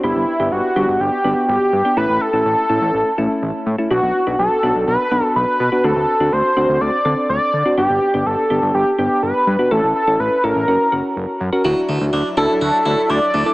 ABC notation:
X:1
M:4/4
L:1/16
Q:1/4=124
K:D
V:1 name="Analog synth lead"
E4 F4 G4 G4 | B2 A12 z2 | F4 A4 B4 B4 | A4 =c4 d4 d4 |
G4 A4 G2 G2 B4 | A2 A2 B2 ^A8 z2 | z6 A2 A4 d4 |]
V:2 name="Harpsichord"
z16 | z16 | z16 | z16 |
z16 | z16 | F,2 A,2 D2 E2 F2 E2 D2 A,2 |]
V:3 name="String machine"
z16 | z16 | z16 | z16 |
z16 | z16 | [F,DE]16 |]
V:4 name="Synth keys"
[B,DG]2 z [B,DG]2 z [B,DG]3 z [B,DF]4 z [B,DG] | [A,CE]2 z [A,CE]2 z [A,CE]3 z [A,CE]4 z [A,CE] | [B,DF]2 z [B,DF]2 z [B,DF]3 z [B,DF]4 z [B,DF] | [=CDF]2 z [CDF]2 z [CDF]3 z [CDA]4 z [CDF] |
[B,DG]2 z [B,DG]2 z [B,DG]3 z [B,DG]4 z [B,DF] | [CEA]2 z [CEA]2 z [CEA]2 [CF^A]2 [CFA]4 z [CFA] | [DEF]4- [DEF] z [DEF]6- [DEF] z2 [DEA] |]
V:5 name="Analog synth bass" clef=bass
G,,, G,,, z G,,, G,,, z G,,, G,,, G,,, z G,,, z G,,, z G,, z | A,,, A,,, z A,,, A,,, z A,,, A,,, A,,, z A,,, z A,,, z A,, z | B,,, B,,, z B,,, B,,, z B,,, B,,, B,,, z B,,, z B,,, z B,, z | D,, D,, z D,, D,, z D,, D,, D,, z D,, z D,, z D, z |
G,,, G,,, z G,,, G,,, z G,,, G,,, G,,, z G,,, z G,,, z G,, z | A,,, A,,, z A,,, A,,, z A,,, A,,, F,,, z F,,, z F,,, z F,, z | D,, z D,, D,, D,, z D,, z D,, z D,, z D,, z D,, z |]